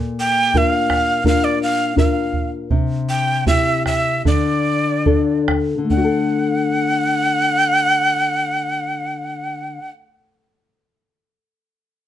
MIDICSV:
0, 0, Header, 1, 4, 480
1, 0, Start_track
1, 0, Key_signature, -1, "minor"
1, 0, Tempo, 711744
1, 1327, Tempo, 758534
1, 1794, Time_signature, 4, 2, 24, 8
1, 2767, Tempo, 828729
1, 3727, Tempo, 863309
1, 7159, End_track
2, 0, Start_track
2, 0, Title_t, "Quena"
2, 0, Program_c, 0, 77
2, 133, Note_on_c, 0, 79, 97
2, 387, Note_on_c, 0, 77, 93
2, 397, Note_off_c, 0, 79, 0
2, 853, Note_off_c, 0, 77, 0
2, 861, Note_on_c, 0, 77, 93
2, 972, Note_on_c, 0, 74, 84
2, 983, Note_off_c, 0, 77, 0
2, 1088, Note_off_c, 0, 74, 0
2, 1098, Note_on_c, 0, 77, 86
2, 1318, Note_off_c, 0, 77, 0
2, 1338, Note_on_c, 0, 77, 70
2, 1657, Note_off_c, 0, 77, 0
2, 2039, Note_on_c, 0, 79, 93
2, 2260, Note_off_c, 0, 79, 0
2, 2281, Note_on_c, 0, 76, 90
2, 2505, Note_off_c, 0, 76, 0
2, 2530, Note_on_c, 0, 76, 90
2, 2756, Note_off_c, 0, 76, 0
2, 2782, Note_on_c, 0, 74, 88
2, 3464, Note_off_c, 0, 74, 0
2, 3729, Note_on_c, 0, 78, 85
2, 5951, Note_off_c, 0, 78, 0
2, 7159, End_track
3, 0, Start_track
3, 0, Title_t, "Nylon-string guitar"
3, 0, Program_c, 1, 24
3, 0, Note_on_c, 1, 46, 66
3, 365, Note_on_c, 1, 62, 44
3, 368, Note_on_c, 1, 65, 46
3, 371, Note_on_c, 1, 70, 50
3, 828, Note_off_c, 1, 62, 0
3, 830, Note_off_c, 1, 65, 0
3, 831, Note_off_c, 1, 70, 0
3, 843, Note_on_c, 1, 62, 52
3, 846, Note_on_c, 1, 65, 45
3, 847, Note_on_c, 1, 70, 52
3, 1314, Note_off_c, 1, 62, 0
3, 1315, Note_off_c, 1, 65, 0
3, 1316, Note_off_c, 1, 70, 0
3, 1322, Note_on_c, 1, 62, 49
3, 1328, Note_on_c, 1, 65, 44
3, 1332, Note_on_c, 1, 70, 51
3, 1767, Note_off_c, 1, 46, 0
3, 1777, Note_off_c, 1, 62, 0
3, 1780, Note_off_c, 1, 65, 0
3, 1782, Note_off_c, 1, 70, 0
3, 1794, Note_on_c, 1, 48, 66
3, 2273, Note_on_c, 1, 60, 45
3, 2276, Note_on_c, 1, 67, 52
3, 2277, Note_on_c, 1, 64, 40
3, 2743, Note_off_c, 1, 48, 0
3, 2753, Note_off_c, 1, 60, 0
3, 2754, Note_off_c, 1, 67, 0
3, 2755, Note_off_c, 1, 64, 0
3, 2772, Note_on_c, 1, 50, 65
3, 3238, Note_on_c, 1, 62, 45
3, 3241, Note_on_c, 1, 69, 46
3, 3242, Note_on_c, 1, 65, 42
3, 3650, Note_off_c, 1, 50, 0
3, 3657, Note_on_c, 1, 50, 53
3, 3692, Note_off_c, 1, 62, 0
3, 3694, Note_on_c, 1, 57, 44
3, 3714, Note_off_c, 1, 65, 0
3, 3715, Note_off_c, 1, 69, 0
3, 3731, Note_on_c, 1, 62, 48
3, 3767, Note_on_c, 1, 66, 46
3, 3803, Note_off_c, 1, 66, 0
3, 3805, Note_on_c, 1, 69, 56
3, 5882, Note_off_c, 1, 50, 0
3, 5917, Note_off_c, 1, 57, 0
3, 5953, Note_off_c, 1, 62, 0
3, 6027, Note_off_c, 1, 69, 0
3, 7159, End_track
4, 0, Start_track
4, 0, Title_t, "Bombo"
4, 364, Note_on_c, 9, 43, 65
4, 431, Note_off_c, 9, 43, 0
4, 606, Note_on_c, 9, 37, 48
4, 606, Note_on_c, 9, 43, 47
4, 673, Note_off_c, 9, 37, 0
4, 673, Note_off_c, 9, 43, 0
4, 838, Note_on_c, 9, 43, 66
4, 905, Note_off_c, 9, 43, 0
4, 1328, Note_on_c, 9, 43, 76
4, 1391, Note_off_c, 9, 43, 0
4, 1558, Note_on_c, 9, 43, 51
4, 1621, Note_off_c, 9, 43, 0
4, 1792, Note_on_c, 9, 43, 67
4, 1855, Note_off_c, 9, 43, 0
4, 2274, Note_on_c, 9, 43, 68
4, 2337, Note_off_c, 9, 43, 0
4, 2522, Note_on_c, 9, 37, 47
4, 2522, Note_on_c, 9, 43, 41
4, 2586, Note_off_c, 9, 37, 0
4, 2586, Note_off_c, 9, 43, 0
4, 2772, Note_on_c, 9, 43, 70
4, 2830, Note_off_c, 9, 43, 0
4, 3239, Note_on_c, 9, 43, 72
4, 3297, Note_off_c, 9, 43, 0
4, 3483, Note_on_c, 9, 37, 50
4, 3483, Note_on_c, 9, 43, 50
4, 3541, Note_off_c, 9, 37, 0
4, 3541, Note_off_c, 9, 43, 0
4, 3727, Note_on_c, 9, 43, 58
4, 3783, Note_off_c, 9, 43, 0
4, 7159, End_track
0, 0, End_of_file